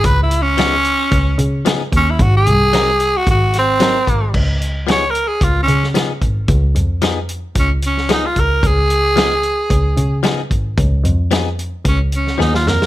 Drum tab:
CC |----------------|----------------|x---------------|----------------|
HH |x-x-x-x-x-x-x-x-|x-x-x-x-x-x-x-x-|--x-x-x-x-x-x-x-|x-x-x-x-x-x-x-x-|
SD |----o-------o---|----o-----o-o---|----o------oo---|----o------oo---|
BD |o-------o-----o-|o-------o-----o-|o-------o-----o-|o-------o-----o-|

CC |----------------|----------------|
HH |x-x-x-x-x-x-x-x-|x-x-x-x-x-x-----|
SD |----o-------o---|----o------ooooo|
BD |o-------o-----o-|o-------o-------|